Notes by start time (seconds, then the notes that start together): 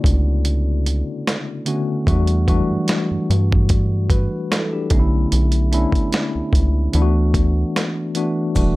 Already playing: C#3 D3 A3 B3 C#4 D4 E4 F#4 A4 D5
0.04 C#2, kick, closed hi-hat
0.45 closed hi-hat
0.86 closed hi-hat
1.27 snare, closed hi-hat
1.66 D3 A3 B3 C#4 F#4, closed hi-hat
2.07 E2 E3 G3 A3 D4 F#4, kick, closed hi-hat
2.27 closed hi-hat
2.47 E3 F#3 A3 D4 F#4, kick, closed hi-hat
2.54 G3
2.71 G2
2.88 snare, closed hi-hat
3.11 G2
3.30 G2, closed hi-hat
3.52 kick
3.69 kick, closed hi-hat
4.10 F#4 B4, kick, closed hi-hat
4.51 E4 A4, snare, closed hi-hat
4.73 D4 G4
4.90 B1 D3 A3 B3 C#4 D#4, kick, closed hi-hat
4.99 E4
5.32 B1, closed hi-hat
5.52 closed hi-hat
5.72 A3 B3 C#4 D4 E4, closed hi-hat
5.92 C#2, kick, closed hi-hat
6.12 snare, closed hi-hat
6.35 C#2
6.53 C#2, kick, closed hi-hat
6.93 D2 E3 A3 B3 D4 E4, closed hi-hat
7.02 F#4
7.34 kick, closed hi-hat
7.76 snare, closed hi-hat
8.15 E3 A3 B3 D4 F#4, closed hi-hat
8.55 E1 E3 G3 A3 D4 F#4, kick, closed hi-hat, maracas